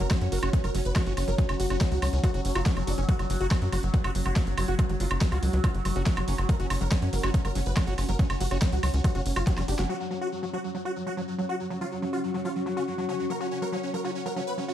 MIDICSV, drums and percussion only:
0, 0, Header, 1, 2, 480
1, 0, Start_track
1, 0, Tempo, 425532
1, 1561, Time_signature, 4, 2, 24, 8
1, 16622, End_track
2, 0, Start_track
2, 0, Title_t, "Drums"
2, 1, Note_on_c, 9, 42, 37
2, 114, Note_off_c, 9, 42, 0
2, 121, Note_on_c, 9, 38, 125
2, 121, Note_on_c, 9, 42, 91
2, 121, Note_on_c, 9, 76, 40
2, 122, Note_on_c, 9, 36, 125
2, 234, Note_off_c, 9, 36, 0
2, 234, Note_off_c, 9, 38, 0
2, 234, Note_off_c, 9, 42, 0
2, 234, Note_off_c, 9, 76, 0
2, 241, Note_on_c, 9, 42, 40
2, 354, Note_off_c, 9, 42, 0
2, 361, Note_on_c, 9, 46, 115
2, 474, Note_off_c, 9, 46, 0
2, 481, Note_on_c, 9, 42, 40
2, 481, Note_on_c, 9, 76, 78
2, 594, Note_off_c, 9, 42, 0
2, 594, Note_off_c, 9, 76, 0
2, 601, Note_on_c, 9, 42, 93
2, 602, Note_on_c, 9, 36, 127
2, 714, Note_off_c, 9, 36, 0
2, 714, Note_off_c, 9, 42, 0
2, 721, Note_on_c, 9, 42, 39
2, 721, Note_on_c, 9, 76, 39
2, 834, Note_off_c, 9, 42, 0
2, 834, Note_off_c, 9, 76, 0
2, 841, Note_on_c, 9, 46, 111
2, 954, Note_off_c, 9, 46, 0
2, 961, Note_on_c, 9, 42, 38
2, 1074, Note_off_c, 9, 42, 0
2, 1081, Note_on_c, 9, 38, 121
2, 1081, Note_on_c, 9, 42, 88
2, 1081, Note_on_c, 9, 76, 74
2, 1082, Note_on_c, 9, 36, 122
2, 1194, Note_off_c, 9, 36, 0
2, 1194, Note_off_c, 9, 38, 0
2, 1194, Note_off_c, 9, 42, 0
2, 1194, Note_off_c, 9, 76, 0
2, 1201, Note_on_c, 9, 42, 38
2, 1314, Note_off_c, 9, 42, 0
2, 1321, Note_on_c, 9, 46, 111
2, 1321, Note_on_c, 9, 76, 40
2, 1434, Note_off_c, 9, 46, 0
2, 1434, Note_off_c, 9, 76, 0
2, 1441, Note_on_c, 9, 42, 39
2, 1554, Note_off_c, 9, 42, 0
2, 1561, Note_on_c, 9, 36, 127
2, 1561, Note_on_c, 9, 42, 90
2, 1674, Note_off_c, 9, 36, 0
2, 1674, Note_off_c, 9, 42, 0
2, 1681, Note_on_c, 9, 42, 38
2, 1681, Note_on_c, 9, 76, 83
2, 1794, Note_off_c, 9, 42, 0
2, 1794, Note_off_c, 9, 76, 0
2, 1801, Note_on_c, 9, 46, 111
2, 1914, Note_off_c, 9, 46, 0
2, 1921, Note_on_c, 9, 42, 37
2, 1921, Note_on_c, 9, 76, 40
2, 2034, Note_off_c, 9, 42, 0
2, 2034, Note_off_c, 9, 76, 0
2, 2041, Note_on_c, 9, 38, 116
2, 2041, Note_on_c, 9, 42, 91
2, 2042, Note_on_c, 9, 36, 123
2, 2154, Note_off_c, 9, 36, 0
2, 2154, Note_off_c, 9, 38, 0
2, 2154, Note_off_c, 9, 42, 0
2, 2161, Note_on_c, 9, 42, 38
2, 2274, Note_off_c, 9, 42, 0
2, 2281, Note_on_c, 9, 46, 109
2, 2281, Note_on_c, 9, 76, 81
2, 2394, Note_off_c, 9, 46, 0
2, 2394, Note_off_c, 9, 76, 0
2, 2402, Note_on_c, 9, 42, 37
2, 2514, Note_off_c, 9, 42, 0
2, 2521, Note_on_c, 9, 42, 89
2, 2521, Note_on_c, 9, 76, 40
2, 2522, Note_on_c, 9, 36, 122
2, 2634, Note_off_c, 9, 36, 0
2, 2634, Note_off_c, 9, 42, 0
2, 2634, Note_off_c, 9, 76, 0
2, 2641, Note_on_c, 9, 42, 39
2, 2754, Note_off_c, 9, 42, 0
2, 2761, Note_on_c, 9, 46, 107
2, 2874, Note_off_c, 9, 46, 0
2, 2881, Note_on_c, 9, 42, 38
2, 2881, Note_on_c, 9, 76, 83
2, 2994, Note_off_c, 9, 42, 0
2, 2994, Note_off_c, 9, 76, 0
2, 3001, Note_on_c, 9, 36, 118
2, 3001, Note_on_c, 9, 38, 116
2, 3001, Note_on_c, 9, 42, 87
2, 3114, Note_off_c, 9, 36, 0
2, 3114, Note_off_c, 9, 38, 0
2, 3114, Note_off_c, 9, 42, 0
2, 3121, Note_on_c, 9, 42, 36
2, 3121, Note_on_c, 9, 76, 41
2, 3234, Note_off_c, 9, 42, 0
2, 3234, Note_off_c, 9, 76, 0
2, 3241, Note_on_c, 9, 46, 112
2, 3354, Note_off_c, 9, 46, 0
2, 3361, Note_on_c, 9, 42, 38
2, 3474, Note_off_c, 9, 42, 0
2, 3481, Note_on_c, 9, 36, 121
2, 3481, Note_on_c, 9, 42, 87
2, 3594, Note_off_c, 9, 36, 0
2, 3594, Note_off_c, 9, 42, 0
2, 3601, Note_on_c, 9, 42, 39
2, 3601, Note_on_c, 9, 76, 41
2, 3714, Note_off_c, 9, 42, 0
2, 3714, Note_off_c, 9, 76, 0
2, 3721, Note_on_c, 9, 46, 106
2, 3834, Note_off_c, 9, 46, 0
2, 3842, Note_on_c, 9, 42, 37
2, 3954, Note_off_c, 9, 42, 0
2, 3961, Note_on_c, 9, 36, 123
2, 3962, Note_on_c, 9, 38, 115
2, 3962, Note_on_c, 9, 42, 90
2, 3962, Note_on_c, 9, 76, 85
2, 4074, Note_off_c, 9, 36, 0
2, 4074, Note_off_c, 9, 38, 0
2, 4074, Note_off_c, 9, 42, 0
2, 4074, Note_off_c, 9, 76, 0
2, 4081, Note_on_c, 9, 42, 38
2, 4194, Note_off_c, 9, 42, 0
2, 4201, Note_on_c, 9, 46, 106
2, 4201, Note_on_c, 9, 76, 42
2, 4314, Note_off_c, 9, 46, 0
2, 4314, Note_off_c, 9, 76, 0
2, 4321, Note_on_c, 9, 42, 38
2, 4434, Note_off_c, 9, 42, 0
2, 4441, Note_on_c, 9, 36, 118
2, 4441, Note_on_c, 9, 42, 88
2, 4554, Note_off_c, 9, 36, 0
2, 4554, Note_off_c, 9, 42, 0
2, 4561, Note_on_c, 9, 42, 38
2, 4561, Note_on_c, 9, 76, 84
2, 4674, Note_off_c, 9, 42, 0
2, 4674, Note_off_c, 9, 76, 0
2, 4681, Note_on_c, 9, 46, 102
2, 4794, Note_off_c, 9, 46, 0
2, 4801, Note_on_c, 9, 42, 39
2, 4801, Note_on_c, 9, 76, 43
2, 4914, Note_off_c, 9, 42, 0
2, 4914, Note_off_c, 9, 76, 0
2, 4921, Note_on_c, 9, 36, 117
2, 4921, Note_on_c, 9, 38, 110
2, 4921, Note_on_c, 9, 42, 89
2, 5034, Note_off_c, 9, 36, 0
2, 5034, Note_off_c, 9, 38, 0
2, 5034, Note_off_c, 9, 42, 0
2, 5041, Note_on_c, 9, 42, 39
2, 5154, Note_off_c, 9, 42, 0
2, 5161, Note_on_c, 9, 46, 108
2, 5161, Note_on_c, 9, 76, 84
2, 5274, Note_off_c, 9, 46, 0
2, 5274, Note_off_c, 9, 76, 0
2, 5281, Note_on_c, 9, 42, 39
2, 5394, Note_off_c, 9, 42, 0
2, 5401, Note_on_c, 9, 36, 116
2, 5401, Note_on_c, 9, 42, 93
2, 5401, Note_on_c, 9, 76, 42
2, 5514, Note_off_c, 9, 36, 0
2, 5514, Note_off_c, 9, 42, 0
2, 5514, Note_off_c, 9, 76, 0
2, 5521, Note_on_c, 9, 42, 41
2, 5634, Note_off_c, 9, 42, 0
2, 5641, Note_on_c, 9, 46, 105
2, 5754, Note_off_c, 9, 46, 0
2, 5761, Note_on_c, 9, 42, 38
2, 5761, Note_on_c, 9, 76, 81
2, 5874, Note_off_c, 9, 42, 0
2, 5874, Note_off_c, 9, 76, 0
2, 5881, Note_on_c, 9, 36, 116
2, 5881, Note_on_c, 9, 38, 115
2, 5881, Note_on_c, 9, 42, 93
2, 5994, Note_off_c, 9, 36, 0
2, 5994, Note_off_c, 9, 38, 0
2, 5994, Note_off_c, 9, 42, 0
2, 6001, Note_on_c, 9, 42, 41
2, 6001, Note_on_c, 9, 76, 42
2, 6114, Note_off_c, 9, 42, 0
2, 6114, Note_off_c, 9, 76, 0
2, 6121, Note_on_c, 9, 46, 103
2, 6234, Note_off_c, 9, 46, 0
2, 6241, Note_on_c, 9, 42, 40
2, 6354, Note_off_c, 9, 42, 0
2, 6361, Note_on_c, 9, 36, 116
2, 6361, Note_on_c, 9, 42, 90
2, 6361, Note_on_c, 9, 76, 87
2, 6474, Note_off_c, 9, 36, 0
2, 6474, Note_off_c, 9, 42, 0
2, 6474, Note_off_c, 9, 76, 0
2, 6481, Note_on_c, 9, 42, 39
2, 6594, Note_off_c, 9, 42, 0
2, 6601, Note_on_c, 9, 46, 101
2, 6601, Note_on_c, 9, 76, 42
2, 6714, Note_off_c, 9, 46, 0
2, 6714, Note_off_c, 9, 76, 0
2, 6721, Note_on_c, 9, 42, 39
2, 6834, Note_off_c, 9, 42, 0
2, 6841, Note_on_c, 9, 36, 114
2, 6841, Note_on_c, 9, 38, 112
2, 6841, Note_on_c, 9, 42, 90
2, 6954, Note_off_c, 9, 36, 0
2, 6954, Note_off_c, 9, 38, 0
2, 6954, Note_off_c, 9, 42, 0
2, 6961, Note_on_c, 9, 42, 40
2, 6961, Note_on_c, 9, 76, 82
2, 7073, Note_off_c, 9, 42, 0
2, 7073, Note_off_c, 9, 76, 0
2, 7081, Note_on_c, 9, 46, 105
2, 7194, Note_off_c, 9, 46, 0
2, 7201, Note_on_c, 9, 42, 40
2, 7201, Note_on_c, 9, 76, 44
2, 7314, Note_off_c, 9, 42, 0
2, 7314, Note_off_c, 9, 76, 0
2, 7321, Note_on_c, 9, 42, 96
2, 7322, Note_on_c, 9, 36, 119
2, 7434, Note_off_c, 9, 36, 0
2, 7434, Note_off_c, 9, 42, 0
2, 7441, Note_on_c, 9, 42, 42
2, 7554, Note_off_c, 9, 42, 0
2, 7561, Note_on_c, 9, 46, 103
2, 7561, Note_on_c, 9, 76, 81
2, 7674, Note_off_c, 9, 46, 0
2, 7674, Note_off_c, 9, 76, 0
2, 7681, Note_on_c, 9, 42, 40
2, 7794, Note_off_c, 9, 42, 0
2, 7801, Note_on_c, 9, 36, 114
2, 7801, Note_on_c, 9, 38, 120
2, 7801, Note_on_c, 9, 42, 98
2, 7801, Note_on_c, 9, 76, 40
2, 7914, Note_off_c, 9, 36, 0
2, 7914, Note_off_c, 9, 38, 0
2, 7914, Note_off_c, 9, 42, 0
2, 7914, Note_off_c, 9, 76, 0
2, 7921, Note_on_c, 9, 42, 42
2, 8034, Note_off_c, 9, 42, 0
2, 8041, Note_on_c, 9, 46, 103
2, 8154, Note_off_c, 9, 46, 0
2, 8161, Note_on_c, 9, 42, 41
2, 8161, Note_on_c, 9, 76, 83
2, 8274, Note_off_c, 9, 42, 0
2, 8274, Note_off_c, 9, 76, 0
2, 8281, Note_on_c, 9, 36, 116
2, 8281, Note_on_c, 9, 42, 97
2, 8394, Note_off_c, 9, 36, 0
2, 8394, Note_off_c, 9, 42, 0
2, 8401, Note_on_c, 9, 42, 41
2, 8401, Note_on_c, 9, 76, 42
2, 8514, Note_off_c, 9, 42, 0
2, 8514, Note_off_c, 9, 76, 0
2, 8521, Note_on_c, 9, 46, 100
2, 8634, Note_off_c, 9, 46, 0
2, 8641, Note_on_c, 9, 42, 41
2, 8754, Note_off_c, 9, 42, 0
2, 8761, Note_on_c, 9, 36, 110
2, 8761, Note_on_c, 9, 38, 112
2, 8761, Note_on_c, 9, 42, 93
2, 8761, Note_on_c, 9, 76, 79
2, 8874, Note_off_c, 9, 36, 0
2, 8874, Note_off_c, 9, 38, 0
2, 8874, Note_off_c, 9, 42, 0
2, 8874, Note_off_c, 9, 76, 0
2, 8881, Note_on_c, 9, 42, 42
2, 8994, Note_off_c, 9, 42, 0
2, 9001, Note_on_c, 9, 46, 106
2, 9001, Note_on_c, 9, 76, 40
2, 9114, Note_off_c, 9, 46, 0
2, 9114, Note_off_c, 9, 76, 0
2, 9121, Note_on_c, 9, 42, 43
2, 9234, Note_off_c, 9, 42, 0
2, 9241, Note_on_c, 9, 36, 120
2, 9241, Note_on_c, 9, 42, 94
2, 9354, Note_off_c, 9, 36, 0
2, 9354, Note_off_c, 9, 42, 0
2, 9361, Note_on_c, 9, 42, 43
2, 9361, Note_on_c, 9, 76, 82
2, 9474, Note_off_c, 9, 42, 0
2, 9474, Note_off_c, 9, 76, 0
2, 9481, Note_on_c, 9, 46, 107
2, 9594, Note_off_c, 9, 46, 0
2, 9601, Note_on_c, 9, 42, 41
2, 9601, Note_on_c, 9, 76, 38
2, 9714, Note_off_c, 9, 42, 0
2, 9714, Note_off_c, 9, 76, 0
2, 9721, Note_on_c, 9, 36, 118
2, 9721, Note_on_c, 9, 38, 121
2, 9721, Note_on_c, 9, 42, 96
2, 9834, Note_off_c, 9, 36, 0
2, 9834, Note_off_c, 9, 38, 0
2, 9834, Note_off_c, 9, 42, 0
2, 9841, Note_on_c, 9, 42, 41
2, 9954, Note_off_c, 9, 42, 0
2, 9961, Note_on_c, 9, 46, 103
2, 9961, Note_on_c, 9, 76, 79
2, 10074, Note_off_c, 9, 46, 0
2, 10074, Note_off_c, 9, 76, 0
2, 10081, Note_on_c, 9, 42, 43
2, 10194, Note_off_c, 9, 42, 0
2, 10201, Note_on_c, 9, 42, 100
2, 10201, Note_on_c, 9, 76, 40
2, 10202, Note_on_c, 9, 36, 115
2, 10314, Note_off_c, 9, 36, 0
2, 10314, Note_off_c, 9, 42, 0
2, 10314, Note_off_c, 9, 76, 0
2, 10321, Note_on_c, 9, 42, 43
2, 10434, Note_off_c, 9, 42, 0
2, 10441, Note_on_c, 9, 46, 100
2, 10554, Note_off_c, 9, 46, 0
2, 10561, Note_on_c, 9, 42, 41
2, 10561, Note_on_c, 9, 76, 80
2, 10674, Note_off_c, 9, 42, 0
2, 10674, Note_off_c, 9, 76, 0
2, 10681, Note_on_c, 9, 38, 62
2, 10681, Note_on_c, 9, 42, 98
2, 10682, Note_on_c, 9, 36, 114
2, 10794, Note_off_c, 9, 36, 0
2, 10794, Note_off_c, 9, 38, 0
2, 10794, Note_off_c, 9, 42, 0
2, 10802, Note_on_c, 9, 38, 62
2, 10802, Note_on_c, 9, 42, 42
2, 10802, Note_on_c, 9, 76, 39
2, 10914, Note_off_c, 9, 38, 0
2, 10914, Note_off_c, 9, 42, 0
2, 10914, Note_off_c, 9, 76, 0
2, 10921, Note_on_c, 9, 46, 106
2, 11034, Note_off_c, 9, 46, 0
2, 11042, Note_on_c, 9, 38, 86
2, 11042, Note_on_c, 9, 42, 42
2, 11154, Note_off_c, 9, 38, 0
2, 11154, Note_off_c, 9, 42, 0
2, 16622, End_track
0, 0, End_of_file